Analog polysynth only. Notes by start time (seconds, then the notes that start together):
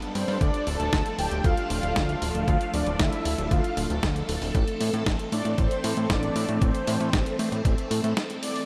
0.15 C4 C5
0.41 D4 D5
0.67 A4 A5
1.19 G4 G5
1.44 F4 F5
1.70 F4 F5
2.48 F4 F5
2.74 D4 D5
3.00 E4 E5
3.51 F4 F5
5.33 D4 D5
5.59 C4 C5
6.10 D4 D5
6.61 C4 C5
8.42 D5